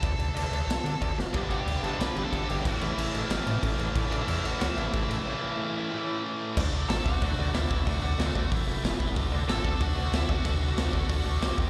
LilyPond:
<<
  \new Staff \with { instrumentName = "Lead electric guitar" } { \time 4/4 \key d \major \tempo 4 = 184 <a' a''>2.~ <a' a''>8 r8 | r8 <fis' fis''>16 <g' g''>8. <a' a''>8 <b' b''>8. <a' a''>8. <g' g''>8 | <fis' fis''>8 <e' e''>2 r4. | r8 <d' d''>16 <e' e''>8. <fis' fis''>8 <fis' fis''>8 <e' e''>4 <e' e''>8~ |
<e' e''>2. r4 | r4 <a' a''>8 <fis' fis''>4. <e' e''>4 | <fis' fis''>8 <fis' fis''>4. r2 | r4 <a' a''>4 <fis' fis''>4 <e' e''>8 <fis' fis''>8~ |
<fis' fis''>2.~ <fis' fis''>8 r8 | }
  \new Staff \with { instrumentName = "Distorted electric guitar" } { \time 4/4 \key d \major r1 | <g, d g b d'>4. <g, d g b d'>2~ <g, d g b d'>8 | <a, e a cis' e'>4. <a, e a cis' e'>2~ <a, e a cis' e'>8 | <a, e a cis' e'>4. <a, e a cis' e'>2~ <a, e a cis' e'>8 |
<a, e a cis' e'>4. <a, e a cis' e'>2~ <a, e a cis' e'>8 | <d fis a d'>8 <d fis a d'>8 <d fis a d'>8 <d fis a d'>8 <d fis a d'>8 <d fis a d'>8 <d fis a d'>8 <d fis a d'>8 | <d fis a d'>8 <d fis a d'>8 <d fis a d'>8 <d fis a d'>8 <a, e a e'>8 <a, e a e'>8 <e b e' b'>8 <e b e' b'>8 | <d a d' fis' a'>8 <d a d' fis' a'>8 <d a d' fis' a'>8 <d a d' fis' a'>8 <d a d' fis' a'>8 <d a d' fis' a'>8 <d a d' fis' a'>8 <d a d' fis' a'>8 |
<d a d' fis' a'>8 <d a d' fis' a'>8 <d a d' fis' a'>8 <d a d' fis' a'>8 <d a d' fis' a'>8 <d a d' fis' a'>8 <c g c' g'>8 <c g c' g'>8 | }
  \new Staff \with { instrumentName = "Distorted electric guitar" } { \clef bass \time 4/4 \key d \major r1 | <g, d g>2 <g, d g>2 | <a, e a>2 <a, e a>2 | <a, e a>2 <a, e a>2 |
<a, e a>2 <a, e a>2 | r1 | r1 | r1 |
r1 | }
  \new Staff \with { instrumentName = "Analog synth bass" } { \clef bass \time 4/4 \key d \major d,8 d,8 d,8 d,8 b,,8 d8 d,8 fis,,8 | g,,8 g,,8 d,8 g,,8 b,,8 g,,8 g,,8 g,,8 | a,,8 a,,8 a,,8 a,,8 g,,8 a,8 a,,8 a,,8 | a,,8 a,,8 e,8 a,,8 cis,8 a,,8 a,,8 a,,8 |
r1 | d,8 d,8 a,,8 d,8 d,8 d,8 d,8 d,8 | d,8 d,8 d,8 d,8 a,,8 fis,,8 e,,8 e,,8 | d,8 d,8 a,,8 d,8 d,8 d,8 d,8 d,8 |
d,8 d,8 d,8 d,8 d,8 d,8 c,8 ees,8 | }
  \new DrumStaff \with { instrumentName = "Drums" } \drummode { \time 4/4 <cymc bd>8 cymc8 cymc8 cymc8 <cymc sn>8 cymc8 <cymc bd>8 sn8 | <cymc bd>8 cymc8 cymc8 cymc8 <cymc sn>8 cymc8 <cymc bd>8 cymc8 | <cymc bd>8 cymc8 cymc8 cymc8 <cymc sn>8 cymc8 <cymc bd>8 cymc8 | <cymc bd>8 cymc8 cymc8 cymc8 <cymc sn>8 cymc8 <cymc bd>8 cymc8 |
r4 r4 r4 r4 | <cymc bd>4 <hho sn>8 bd8 <hho bd>4 <hho sn>8 bd8 | <hho bd>4 <hho sn>8 bd8 <hho bd>4 <hho sn>8 bd8 | <hho bd>4 <hho sn>8 bd8 <hho bd>4 <hho sn>8 bd8 |
<hho bd>4 <hho sn>8 bd8 <hho bd>4 <hho sn>8 bd8 | }
>>